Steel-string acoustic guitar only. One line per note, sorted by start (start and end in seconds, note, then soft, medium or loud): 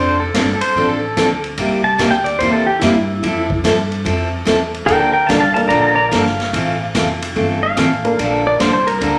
0.00 0.16 F3 medium
0.00 0.16 C4 medium
0.00 0.16 D4 medium
0.00 0.17 A4 medium
0.35 0.46 F3 medium
0.35 0.46 C4 medium
0.35 0.47 D4 medium
0.35 0.47 A4 medium
0.77 0.98 F3 medium
0.77 0.98 C4 medium
0.77 0.99 D4 medium
0.77 0.99 A4 medium
1.17 1.29 F3 medium
1.17 1.29 C4 medium
1.17 1.29 D4 medium
1.17 1.29 A4 loud
1.58 1.80 C3 medium
1.58 1.80 G3 medium
1.58 1.81 A#3 medium
1.58 1.81 E4 medium
1.58 1.81 G4 medium
1.98 2.10 C3 medium
1.98 2.11 G3 medium
1.98 2.11 A#3 medium
1.98 2.11 E4 medium
1.98 2.11 G4 medium
2.41 2.63 C3 soft
2.41 2.63 G3 medium
2.41 2.64 A#3 medium
2.41 2.63 E4 medium
2.41 2.64 G4 medium
2.81 2.93 C3 medium
2.81 2.93 G3 medium
2.81 2.94 A#3 medium
2.81 2.94 E4 medium
2.81 2.94 G4 medium
3.23 3.45 F3 medium
3.23 3.45 C4 medium
3.23 3.46 E4 medium
3.23 3.46 A4 medium
3.64 3.76 F3 medium
3.64 3.76 C4 medium
3.64 3.76 E4 medium
3.64 3.77 A4 medium
4.05 4.27 F3 medium
4.05 4.28 C4 medium
4.05 4.28 E4 medium
4.05 4.28 A4 medium
4.45 4.58 F3 medium
4.45 4.58 C4 medium
4.45 4.58 E4 medium
4.45 4.59 A4 medium
4.87 5.10 D3 medium
4.87 5.10 F3 medium
4.87 5.10 A#3 medium
4.87 5.10 D4 medium
4.87 5.11 A4 medium
5.29 5.41 D3 medium
5.29 5.41 F3 medium
5.29 5.41 A#3 medium
5.29 5.41 D4 medium
5.29 5.41 A4 medium
5.70 5.92 D3 medium
5.70 5.92 F3 medium
5.70 5.93 A#3 soft
5.70 5.93 D4 medium
5.70 5.93 A4 medium
6.11 6.23 D3 medium
6.11 6.23 F3 medium
6.11 6.24 A#3 medium
6.11 6.24 D4 medium
6.11 6.24 A4 medium
6.53 6.75 E3 medium
6.53 6.75 A3 medium
6.53 6.76 C4 medium
6.53 6.76 F4 medium
6.53 6.76 A4 medium
6.95 7.06 E3 medium
6.95 7.07 A3 medium
6.95 7.07 C4 medium
6.95 7.07 F4 medium
6.95 7.07 A4 medium
7.36 7.58 E3 medium
7.36 7.58 A3 medium
7.36 7.58 C4 medium
7.36 7.58 F4 medium
7.36 7.59 A4 medium
7.77 7.89 E3 medium
7.77 7.89 A3 medium
7.77 7.89 C4 medium
7.77 7.89 F4 medium
7.77 7.89 A4 medium
8.19 8.41 D3 medium
8.19 8.41 F3 medium
8.19 8.41 A#3 medium
8.19 8.41 D4 medium
8.19 8.41 A4 medium
8.60 8.72 D3 medium
8.60 8.72 F3 medium
8.60 8.72 A#3 medium
8.60 8.72 D4 medium
8.60 8.72 A4 medium
9.01 9.19 D3 medium
9.01 9.19 F3 medium
9.01 9.19 A#3 medium
9.01 9.19 D4 medium
9.01 9.19 A4 medium